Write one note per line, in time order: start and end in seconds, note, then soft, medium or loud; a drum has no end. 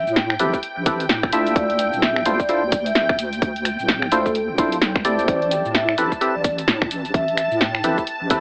0.00 5.29 G5 medium
0.07 0.38 A2 medium
0.07 cabasa soft
0.16 0.25 G5 medium
0.16 snare loud
0.16 closed hi-hat medium
0.16 cabasa soft
0.30 0.36 G5 medium
0.30 finger snap medium
0.39 0.52 A1 loud
0.39 0.59 C4 medium
0.39 0.59 E4 medium
0.39 0.59 G4 medium
0.39 0.59 A4 medium
0.39 0.59 B4 medium
0.39 closed hi-hat medium
0.39 cabasa medium
0.54 kick medium
0.54 cabasa soft
0.63 closed hi-hat medium
0.63 cabasa soft
0.77 1.08 A1 medium
0.86 1.05 C4 medium
0.86 1.05 E4 medium
0.86 1.06 G4 medium
0.86 1.05 A4 medium
0.86 1.05 B4 medium
0.86 kick loud
0.86 closed hi-hat loud
0.86 cabasa medium
1.00 closed hi-hat medium
1.00 cabasa soft
1.09 1.30 A2 medium
1.09 snare loud
1.09 closed hi-hat medium
1.09 cabasa soft
1.23 finger snap medium
1.23 kick loud
1.33 1.54 D2 medium
1.33 2.24 D4 medium
1.33 2.24 E4 medium
1.33 2.23 F4 medium
1.33 2.24 A4 medium
1.33 2.24 E5 medium
1.33 closed hi-hat medium
1.33 cabasa medium
1.47 closed hi-hat soft
1.47 cabasa soft
1.56 1.90 D2 loud
1.56 1.65 D5 medium
1.56 kick loud
1.56 closed hi-hat medium
1.56 cabasa soft
1.70 1.76 D5 medium
1.70 closed hi-hat soft
1.79 1.88 G5 medium
1.79 closed hi-hat loud
1.79 cabasa medium
1.93 2.24 D1 medium
1.93 1.99 G5 medium
1.93 cabasa soft
2.02 2.17 E5 medium
2.02 snare loud
2.02 closed hi-hat medium
2.02 cabasa soft
2.16 finger snap medium
2.26 2.38 D2 loud
2.26 2.40 D4 medium
2.26 2.40 E4 medium
2.26 2.40 F4 medium
2.26 2.40 A4 medium
2.26 2.40 C5 medium
2.26 closed hi-hat medium
2.26 cabasa medium
2.40 2.83 D5 medium
2.40 kick medium
2.40 cabasa soft
2.49 2.63 D4 medium
2.49 2.63 E4 medium
2.49 2.63 F4 medium
2.49 2.63 A4 medium
2.49 2.63 C5 loud
2.49 closed hi-hat medium
2.49 cabasa soft
2.63 2.94 D2 medium
2.72 kick loud
2.72 closed hi-hat loud
2.72 cabasa medium
2.86 2.94 E5 medium
2.86 closed hi-hat medium
2.86 cabasa soft
2.95 3.16 D1 medium
2.95 3.10 E5 medium
2.95 snare loud
2.95 closed hi-hat medium
2.95 cabasa soft
3.09 finger snap medium
3.09 kick loud
3.19 3.40 D2 medium
3.19 closed hi-hat medium
3.19 cabasa medium
3.33 closed hi-hat soft
3.33 cabasa soft
3.42 3.76 D2 loud
3.42 kick loud
3.42 closed hi-hat medium
3.42 cabasa soft
3.56 closed hi-hat soft
3.65 finger snap soft
3.65 closed hi-hat loud
3.65 cabasa medium
3.79 4.10 D1 medium
3.79 cabasa soft
3.88 snare loud
3.88 closed hi-hat medium
3.88 cabasa soft
4.02 finger snap medium
4.12 4.51 D2 loud
4.12 4.31 D4 medium
4.12 4.31 E4 medium
4.12 4.31 F4 medium
4.12 4.31 A4 medium
4.12 4.23 C5 medium
4.12 4.31 C5 medium
4.12 closed hi-hat medium
4.12 cabasa medium
4.26 4.37 A4 medium
4.26 kick medium
4.26 cabasa soft
4.35 closed hi-hat medium
4.35 cabasa soft
4.49 4.83 D1 medium
4.58 4.78 D4 medium
4.58 4.78 E4 medium
4.58 4.78 F4 medium
4.58 4.78 A4 medium
4.58 4.78 C5 medium
4.58 kick loud
4.58 closed hi-hat loud
4.58 cabasa medium
4.72 closed hi-hat medium
4.72 cabasa soft
4.82 5.02 C2 medium
4.82 snare loud
4.82 closed hi-hat medium
4.82 cabasa soft
4.96 finger snap medium
4.96 kick loud
5.05 5.26 D2 medium
5.05 5.96 C4 medium
5.05 5.96 E4 medium
5.05 5.96 G4 medium
5.05 5.96 A4 medium
5.05 5.16 D5 medium
5.05 5.96 D5 medium
5.05 closed hi-hat medium
5.05 cabasa medium
5.19 5.25 C5 medium
5.19 closed hi-hat soft
5.19 cabasa soft
5.28 5.62 A1 loud
5.28 5.37 C5 medium
5.28 5.37 D5 medium
5.28 8.40 A5 medium
5.28 kick loud
5.28 closed hi-hat medium
5.28 cabasa soft
5.42 5.48 D5 medium
5.42 closed hi-hat soft
5.51 5.60 G5 medium
5.51 closed hi-hat loud
5.51 cabasa medium
5.65 5.96 A2 medium
5.65 cabasa soft
5.75 5.90 E5 medium
5.75 snare loud
5.75 closed hi-hat medium
5.75 cabasa soft
5.89 finger snap medium
5.98 6.10 A1 loud
5.98 6.12 C4 medium
5.98 6.12 E4 medium
5.98 6.12 G4 medium
5.98 6.12 A4 medium
5.98 6.12 B4 medium
5.98 closed hi-hat medium
5.98 cabasa medium
6.12 kick medium
6.12 cabasa soft
6.21 6.35 C4 medium
6.21 6.35 E4 medium
6.21 6.35 G4 medium
6.21 6.35 A4 medium
6.21 6.35 B4 loud
6.21 closed hi-hat medium
6.21 cabasa soft
6.35 6.66 A1 medium
6.35 6.46 D5 medium
6.44 kick loud
6.44 closed hi-hat loud
6.44 cabasa medium
6.58 closed hi-hat medium
6.58 cabasa soft
6.68 6.89 A2 medium
6.68 snare loud
6.68 closed hi-hat medium
6.68 cabasa soft
6.82 finger snap medium
6.82 kick loud
6.91 7.12 A1 medium
6.91 closed hi-hat medium
6.91 cabasa medium
7.05 closed hi-hat soft
7.05 cabasa soft
7.14 7.49 A1 loud
7.14 7.29 E5 medium
7.14 kick loud
7.14 closed hi-hat medium
7.14 cabasa soft
7.28 closed hi-hat soft
7.37 7.52 E5 medium
7.37 finger snap soft
7.37 closed hi-hat loud
7.37 cabasa medium
7.51 7.82 A2 medium
7.51 cabasa soft
7.61 7.70 G5 medium
7.61 snare loud
7.61 closed hi-hat medium
7.61 cabasa soft
7.75 7.81 G5 medium
7.75 finger snap medium
7.84 7.96 A1 loud
7.84 8.03 C4 medium
7.84 8.03 E4 medium
7.84 8.03 G4 medium
7.84 8.03 A4 medium
7.84 8.03 B4 medium
7.84 closed hi-hat medium
7.84 cabasa medium
7.98 kick medium
7.98 cabasa soft
8.07 closed hi-hat medium
8.07 cabasa soft
8.21 8.40 A1 medium
8.30 8.40 C4 medium
8.30 8.40 E4 medium
8.30 8.40 G4 medium
8.30 8.40 A4 medium
8.30 8.40 B4 medium
8.30 kick loud
8.30 closed hi-hat loud
8.30 cabasa medium